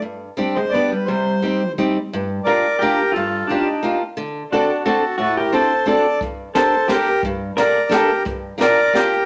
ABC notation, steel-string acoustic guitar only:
X:1
M:3/4
L:1/8
Q:"Swing" 1/4=175
K:Cm
V:1 name="Steel-string acoustic guitar"
G,,2 [G,CDG] z [G,=B,DG] z | C,2 [G,CEG] z [G,CEG] z | [K:Gm] G,,2 [B,DFG] z [B,DFG] z | G,,2 [B,DFG] z [B,DFG] z |
D,2 [CD^FA] z [CDFA] z | A,,2 [CD^FA] z [CDFA] z | G,,2 [B,DGA] z [B,DGA] z | G,,2 [B,DGA] z [B,DGA] z |
G,,2 [B,DFG] z [B,DFG] z |]